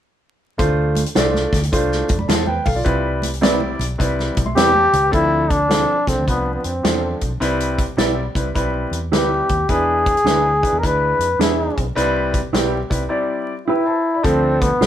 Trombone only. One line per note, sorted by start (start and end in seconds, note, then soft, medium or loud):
4.56 5.09 G4 loud
5.14 5.52 E4 loud
5.50 6.10 D4 medium
6.08 6.28 C4 medium
6.28 6.54 B3 medium
6.55 6.67 B3 medium
6.66 7.22 C4 medium
9.13 9.72 G4 medium
9.70 10.80 G#4 medium
10.79 10.87 A#4 medium
10.86 11.41 B4 medium
11.42 11.85 E4 medium
13.67 14.26 E4 medium
14.24 14.63 C4 medium
14.61 14.87 B3 medium